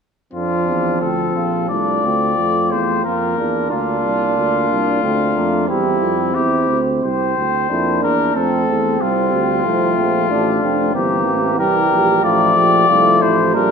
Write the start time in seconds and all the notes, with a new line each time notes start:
0.33 F2 F3 C4 D4 F4
0.67 E2
1.01 D2 C4 A4
1.35 A#1 F4
1.69 C2 A3 D4 F4 D5
2.04 D2 C4
2.37 F2 A3
2.71 E2 C5
3.04 F2 A#3 F4 A#4
3.38 E2 D4
3.71 D2 A#3 D4 F4
4.04 C2
4.37 D2
4.70 C2
5.02 D2 A3 C4 D4
5.36 F2 A#3
5.68 E2 G3 C4 E4 G4
6.01 F2
6.33 E2 C4 E4 G4
6.68 D2
7.03 C2 C4 C5
7.38 D2
7.70 F2 A#3 D4 E4
8.03 E2 D4 A#4
8.35 F2 A3 C4 A4
8.68 E2
9.00 C2 G3 F4
9.33 D2
9.65 C2 F3 A3
9.97 A#1
10.29 A1 A3 D4
10.62 F1 C4
10.94 G1 E3 A#3 C4 G4
11.27 A1
11.59 C2 G3 G4 A#4
11.91 A#1
12.23 A1 F3 A3 F4 D5
12.56 A#1 G4
12.88 C2 F3 A3 F4
13.22 A1 E4 C5
13.54 A#1 G3 A#3 D4 A#4